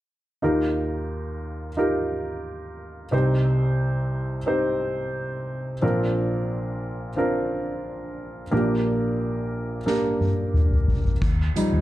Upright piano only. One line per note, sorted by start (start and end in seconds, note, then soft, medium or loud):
0.42 3.09 D#2 soft
0.42 3.09 D#3 medium
0.42 1.68 D#4 medium
0.42 1.69 F4 medium
0.42 1.69 G4 medium
0.42 1.69 A#4 medium
1.77 3.03 D#4 soft
1.77 3.03 F4 soft
1.77 3.04 G4 medium
1.77 3.04 A#4 medium
3.11 5.78 C2 medium
3.11 5.78 C3 soft
3.11 4.38 C4 medium
3.11 4.38 D#4 medium
3.11 4.38 G4 medium
3.11 4.39 C5 medium
4.46 5.72 C4 medium
4.46 5.73 D#4 medium
4.46 5.73 G4 medium
4.46 5.73 C5 medium
5.82 8.48 A#1 soft
5.82 8.48 A#2 medium
5.82 7.08 C4 medium
5.82 7.08 D4 medium
5.82 7.08 F4 medium
5.82 7.09 A#4 medium
7.16 8.42 C4 medium
7.16 8.43 D4 medium
7.16 8.43 F4 soft
7.16 8.43 A#4 medium
8.51 11.18 A#1 medium
8.51 11.18 A#2 medium
8.51 9.77 A#3 medium
8.51 9.78 D4 medium
8.51 9.78 G4 medium
8.51 9.78 A#4 medium
9.86 11.12 A#3 medium
9.86 11.12 D4 soft
9.86 11.13 G4 soft
9.86 11.13 A#4 medium
11.56 11.81 F3 soft
11.56 11.81 G3 soft
11.56 11.81 D#4 soft